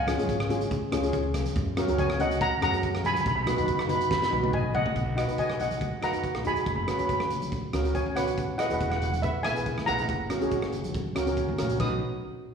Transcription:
Already playing: C#2 F5 G#5
0.07 C#4 F4 G#4, cross-stick, closed hi-hat, high conga
0.18 G#1 C#4 F4 G#4, closed hi-hat, high conga
0.28 kick, closed hi-hat, low conga
0.40 cross-stick
0.49 C#4 F4 G#4, closed hi-hat, low conga
0.61 closed hi-hat
0.71 kick, closed hi-hat
0.92 C#2 C#4 F4 G#4, cross-stick, closed hi-hat
1.03 C#4 F4 G#4, closed hi-hat
1.13 kick, closed hi-hat
1.34 cross-stick, closed hi-hat, high conga, low conga
1.45 closed hi-hat, high conga
1.56 F#2, kick, closed hi-hat
1.77 C#4 F#4 A#4, cross-stick, closed hi-hat, high conga
1.88 C#2 C#4 F#4 A#4, closed hi-hat, high conga
1.98 C#5 G#5, kick, closed hi-hat, low conga
2.10 cross-stick
2.19 C#4 F#4 A#4 D#5 F#5, closed hi-hat, low conga
2.31 closed hi-hat
2.41 F#5 A#5, kick, closed hi-hat
2.61 F#2 C#4 F#4 G#4 F#5 A#5, cross-stick, closed hi-hat
2.72 C#4 F#4 A#4, closed hi-hat
2.83 kick, closed hi-hat
2.95 cross-stick
3.04 G#5 B5, closed hi-hat, high conga, low conga
3.14 B5, closed hi-hat, high conga
3.21 B5
3.26 B1 B5, kick, closed hi-hat
3.36 B5
3.43 D#4 B5, high conga, low conga
3.47 F#4 B4 B5, cross-stick, closed hi-hat
3.57 F#2 D#4 F#4 B4 B5, closed hi-hat
3.66 B5, kick, closed hi-hat, low conga
3.74 B5
3.79 B5, cross-stick
3.88 D#4 F#4 B4 B5, closed hi-hat, low conga
3.95 B5
4.01 B5, closed hi-hat
4.11 B5, kick, snare
4.18 B5
4.22 B5, snare
4.30 B1 D#4 F#4 B4 B5
4.41 D#4 F#4 B4, high tom
4.53 D#5 G#5, kick, mid tom, high conga
4.64 high conga
4.74 D#5 F#5, floor tom, low conga
4.86 floor tom, low conga
4.96 B1, kick, closed hi-hat
5.16 D#4 F#4 B4 D#5 F#5, cross-stick, closed hi-hat
5.27 B1 D#4 F#4 B4, closed hi-hat
5.38 D#5 G#5, kick, closed hi-hat
5.50 cross-stick, high conga
5.60 D#5 F#5, closed hi-hat, low conga
5.71 closed hi-hat, high conga
5.81 kick, closed hi-hat
6.02 F#2 D#4 F#4 B4 F#5 A#5, cross-stick, closed hi-hat
6.13 D#4 F#4 B4, closed hi-hat
6.24 kick, closed hi-hat
6.35 B1, cross-stick
6.44 F#2 D#4 F#4 G#4 G#5 B5, closed hi-hat, low conga
6.54 B5, closed hi-hat
6.61 B5
6.66 F#1 B5, kick, closed hi-hat
6.76 B5
6.83 C#4 B5
6.87 F#4 B4 B5, cross-stick, closed hi-hat
6.98 F#1 C#4 F#4 B4 B5, closed hi-hat
7.05 B5
7.09 kick, closed hi-hat
7.13 B5
7.20 cross-stick, high conga
7.30 closed hi-hat, low conga
7.42 closed hi-hat, high conga
7.52 kick, closed hi-hat
7.73 C#2 C#4 F#4 A#4, cross-stick, closed hi-hat
7.84 C#4 F#4 A#4, closed hi-hat
7.95 C#5 G#5, kick, closed hi-hat
8.06 F#1
8.16 B1 C#4 F#4 B4 C#5 F#5, cross-stick, closed hi-hat, low conga
8.28 closed hi-hat
8.38 E1, kick, closed hi-hat
8.58 E4 G#4 B4 D#5 F#5, cross-stick, closed hi-hat
8.66 E4 F#5
8.70 E1 G#4 B4 F#5, closed hi-hat
8.80 F#5, kick, closed hi-hat
8.90 F#5, cross-stick, high conga
8.97 F#5
9.02 F#5, closed hi-hat, low conga
9.12 F#5, closed hi-hat, high conga
9.22 B4 E5, kick, closed hi-hat
9.43 B1 E4 G#4 A#4 E5 G#5, cross-stick, closed hi-hat
9.55 E4 G#4 B4, closed hi-hat
9.66 kick, closed hi-hat
9.78 E1, cross-stick
9.86 B1 E4 G#4 B4 F#5 A#5, closed hi-hat, low conga
9.99 closed hi-hat
10.09 F#1, kick, closed hi-hat
10.30 C#4 F#4 A#4, cross-stick, closed hi-hat, high conga
10.41 F#1 C#4 F#4 G#4, closed hi-hat
10.51 kick, closed hi-hat
10.62 cross-stick
10.72 closed hi-hat, low conga
10.84 closed hi-hat, high conga
10.94 kick, closed hi-hat, high conga
11.15 C#2 C#4 F#4 A#4, cross-stick, closed hi-hat
11.26 C#4 F#4 A#4, closed hi-hat, low conga
11.37 kick, closed hi-hat
11.48 F#1, high conga
11.58 A#1 C#4 F#4 A#4, cross-stick, closed hi-hat, low conga
11.70 closed hi-hat, low conga
11.79 B1 D#4 F#4 B4 D#6, kick, crash, high conga

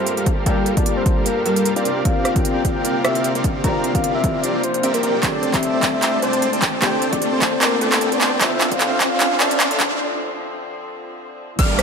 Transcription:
Already playing: G1 G3 A#3 D4 F4 G4 A4 A#4 C5 F5 A5, riser
0.07 closed hi-hat
0.17 G1 G3 G4 A4 A#4 F5, closed hi-hat
0.26 kick, closed hi-hat
0.45 G1 G3 D4 F4 G4 A4 A#4 F5 G5, kick, closed hi-hat
0.66 closed hi-hat
0.75 G3 A#3 D4 F4 A4 A#4 D5 A5, kick, closed hi-hat
0.86 closed hi-hat
0.97 C5
1.06 G1 G3 G4, kick, closed hi-hat
1.26 A#4, closed hi-hat
1.46 G2 G3 G4 A4 A#4 F5, closed hi-hat
1.56 closed hi-hat
1.65 closed hi-hat
1.76 G2 C4 G4 A#4 D5 F5, closed hi-hat
1.85 C3 A#3, closed hi-hat
2.04 C2 C3 C4 D4 F4 A#4 F5, kick, closed hi-hat
2.25 cross-stick, closed hi-hat
2.34 C2 C3 C4 D4 F4 G4 A#4 D5 F5 G5, kick, closed hi-hat
2.45 closed hi-hat
2.65 C2 C4 G4 A#4 D5 F5, kick, closed hi-hat
2.76 G5
2.85 closed hi-hat
3.05 C2 C4 G4 A#4 D5 E5 F5, cross-stick, closed hi-hat
3.15 closed hi-hat
3.24 closed hi-hat
3.35 C2 C4 G4 A#4 D5 F5, closed hi-hat
3.44 kick, closed hi-hat
3.63 C2 C3 C4 D4 F4 G4 A#4 D5 F5 A#5, kick, closed hi-hat
3.84 closed hi-hat
3.93 C2 C3 C4 D4 F4 G4 A#4 D5 F5, kick, closed hi-hat
4.04 closed hi-hat
4.15 E5
4.24 C2 C4 G4 A#4 F5, kick, closed hi-hat
4.44 D5, closed hi-hat
4.63 C5, closed hi-hat
4.74 closed hi-hat
4.83 C2 C4 G4 A#4 D5 E5, closed hi-hat
4.94 A#4, closed hi-hat
5.03 C2 C4 G4 A#4 D5 G5, closed hi-hat
5.22 C2 C3 A3 C4 D4 G4 A4 D5 A5, kick, clap, closed hi-hat
5.43 closed hi-hat
5.52 C2 C3 C4 D4 G4 A4 E5, kick, clap, closed hi-hat
5.63 closed hi-hat
5.83 C2 C4 D5 G5 A5, kick, clap, closed hi-hat
5.94 E5
6.02 clap, closed hi-hat
6.22 C2 C4 C5 D5 G5 A5, closed hi-hat
6.33 closed hi-hat
6.42 closed hi-hat
6.53 C2 C4 C5 D5 G5 A5, closed hi-hat
6.62 kick, clap, closed hi-hat
6.81 C2 C3 C4 D4 G4 A4 C5 D5 G5 A5, kick, clap, closed hi-hat
7.02 closed hi-hat
7.11 C2 C3 C4 D4 G4 C5 D5 G5 A5, kick, closed hi-hat
7.15 A4
7.22 closed hi-hat
7.33 C5
7.42 C2, kick, clap, closed hi-hat
7.61 A#4, clap, closed hi-hat
7.81 C2 C4 A4 C5 D5 G5 A5, closed hi-hat
7.92 clap, closed hi-hat
8.01 closed hi-hat
8.12 C2 C4 C5 D5 G5 A5, closed hi-hat
8.21 clap, closed hi-hat
8.40 D2 D3 F3 C4 D4 E4 F4 A4 C5 E5, kick, clap, closed hi-hat
8.61 clap, closed hi-hat
8.70 D2 D3 D4 F4 C5 F5, kick, closed hi-hat
8.81 clap, closed hi-hat
9.00 D2 D4 A4 C5 F5, kick, clap, closed hi-hat
9.11 F5
9.20 clap, closed hi-hat
9.40 D2 D4 A4 C5 D5 E5 F5, clap, closed hi-hat
9.51 closed hi-hat
9.60 clap, closed hi-hat
9.71 D2 D4 A4 C5 E5 F5, closed hi-hat
9.80 kick, clap, closed hi-hat
11.59 G1 G3 G4 A4 A#4 D5 F5 F6, kick, closed hi-hat, crash, downlifter
11.79 cross-stick, closed hi-hat

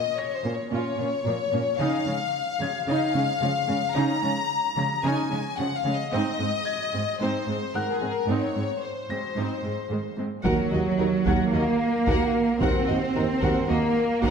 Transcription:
Already playing: D#5 G#6
0.18 C#5 A#6
0.36 C5
0.44 A#2 A#3 C#4
0.54 C#5
0.71 A#2 C#4 F4 C#5
0.98 A#2 A#3 C#4
1.26 A#2 F3 A#3
1.52 A#2 A#3 C#4
1.79 C#3 C#4 D#4 F5
2.06 C#3 G#3 C#4
2.60 C#3 G#3 C#4 G#6
2.87 C#3 C#4 D#4 F5
3.14 C#3 G#3 C#4
3.42 C#3 F3 G#3
3.68 C#3 G#3 C#4
3.95 C#3 C#4 D#4 A#5
4.22 C#3 G#3 C#4
4.77 C#3 G#3 C#4 A#6
5.04 C#3 C#4 D#4 G#5
5.31 C#3 G#3 C#4
5.57 C#3 F3 G#3 F#5
5.76 F5
5.85 C#3 G#3 C#4
5.94 D#5
6.11 G#2 C4 D#4 D#5
6.39 G#2 G#3 C4
6.65 G#6
6.93 G#2 G#3 C4
7.20 G#2 C4 D#4 C5
7.47 G#2 G#3 C4
7.74 G#2 D#3 G#3 A#4 F#5 F#6
7.92 G#4
8.01 G#2 G#3 C4
8.12 A#4
8.28 G#2 C4 D#4 C#5
8.56 G#2 G#3 C4
8.83 C5
9.09 G#2 G#3 C4 A#6
9.36 G#2 C4 D#4
9.63 G#2 G#3 C4
9.90 G#2 D#3 G#3
10.17 G#2 G#3 C4
10.44 D#2 F#3 F#4 A#4 F#5, taiko
10.72 D#2 F#4 D#5
10.99 D#2 D#4 F#4 A#4
11.26 D#2 F#4 A#4 F#5 G#6, taiko
11.52 D#2 A#3 F#4 A#4 D#5
12.07 D#2 F#4 A#4 F#5, taiko
12.61 D#2 C4 F#4 A#4 C5 F#5, taiko
12.88 D#2 F#4 D#5
13.15 D#2 D#4 F#4 A#4
13.41 D#2 F#4 A#4 F#5, taiko
13.68 D#2 A#3 F#4 A#4 D#5
14.23 D#2 D#4 F#4 A#4 D#5 F#5, taiko

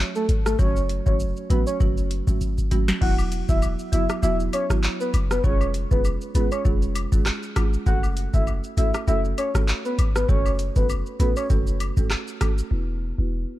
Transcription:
0.15 A4, shaker
0.29 G#1, closed hi-hat, shaker
0.46 A4, cross-stick, shaker
0.59 F#1 F#3 A3 C#4 F#4 C#5, kick, shaker
0.76 shaker
0.89 closed hi-hat, shaker
1.06 F#1 F#3 A3 C#4 F#4 C#5, kick, shaker
1.20 shaker
1.37 shaker
1.50 A1 F#3 A3 C#4 F#4 B4, closed hi-hat, shaker
1.67 C#5, shaker
1.80 F#1 F#3 A3 C#4 F#4, kick, shaker
1.97 shaker
2.11 closed hi-hat, shaker
2.27 G#1 F#3 A3 C#4 F#4, kick, shaker
2.41 kick, shaker
2.58 kick, shaker
2.71 F#3 A3 C#4 F#4, kick, closed hi-hat, shaker
2.88 snare, shaker
3.01 E1 F#3 B3 E4 F#4 F#5, kick, crash
3.18 high woodblock, shaker
3.32 closed hi-hat, cabasa, shaker
3.49 E1 F#3 B3 E4 F#4 E5, kick, shaker
3.62 high woodblock, shaker
3.79 shaker
3.92 F#1 F#3 B3 E4 F#4 E5, closed hi-hat, cabasa, shaker
4.09 cross-stick, high woodblock, shaker
4.23 E1 F#3 B3 E4 F#4 E5, shaker
4.40 shaker
4.53 C#5, closed hi-hat, cabasa, high woodblock, shaker
4.70 F#3 B3 E4 F#4, kick, cross-stick, shaker
4.83 clap, shaker
5.00 B4, shaker
5.14 F#1, closed hi-hat, cabasa, high woodblock, shaker
5.31 B4, cross-stick, shaker
5.44 F1 G#3 C#4 F4 G#4 C#5, kick, shaker
5.61 high woodblock, shaker
5.74 closed hi-hat, cabasa, shaker
5.91 F1 G#3 C#4 F4 G#4 B4, kick, shaker
6.05 high woodblock, shaker
6.21 shaker
6.35 G#1 G#3 C#4 F4 G#4 B4, closed hi-hat, cabasa, shaker
6.52 C#5, high woodblock, shaker
6.65 F1 G#3 C#4 F4 G#4, kick, shaker
6.82 shaker
6.95 closed hi-hat, cabasa, high woodblock, shaker
7.12 F#1 G#3 C#4 F4 G#4, kick, shaker
7.26 cross-stick, clap, shaker
7.43 shaker
7.56 G#3 C#4 F4 G#4, kick, cross-stick, closed hi-hat, cabasa, high woodblock, shaker
7.73 shaker
7.86 F#1 A3 C#4 F#4 A4 F#5, kick, shaker
8.03 high woodblock, shaker
8.17 closed hi-hat, cabasa, shaker
8.33 F#1 A3 C#4 F#4 A4 E5, kick, shaker
8.47 high woodblock, shaker
8.64 shaker
8.77 G#1 A3 C#4 F#4 A4 E5, closed hi-hat, cabasa, shaker
8.94 cross-stick, high woodblock, shaker
9.07 F#1 A3 C#4 F#4 A4 E5, shaker
9.25 shaker
9.38 C#5, closed hi-hat, cabasa, high woodblock, shaker
9.55 A3 C#4 F#4 A4, kick, cross-stick, shaker
9.68 clap, shaker
9.85 B4, shaker
9.99 G#1, closed hi-hat, cabasa, high woodblock, shaker
10.15 B4, cross-stick, shaker
10.29 F#1 A3 C#4 F#4 A4 C#5, kick, shaker
10.46 high woodblock, shaker
10.59 closed hi-hat, cabasa, shaker
10.76 F#1 A3 C#4 F#4 A4 B4, kick, shaker
10.89 high woodblock, shaker
11.06 shaker
11.19 A1 A3 C#4 F#4 A4 B4, closed hi-hat, cabasa, shaker
11.36 C#5, high woodblock, shaker
11.50 F#1 A3 C#4 F#4 A4, kick, shaker
11.67 shaker
11.80 closed hi-hat, cabasa, high woodblock, shaker
11.97 G#1 A3 C#4 F#4 A4, kick, shaker
12.10 cross-stick, clap, shaker
12.27 shaker
12.41 A3 C#4 F#4 A4, kick, cross-stick, closed hi-hat, cabasa, high woodblock, shaker
12.58 shaker
12.71 E1 B3 E4 F#4 B4
13.18 E1 B3 E4 F#4 B4

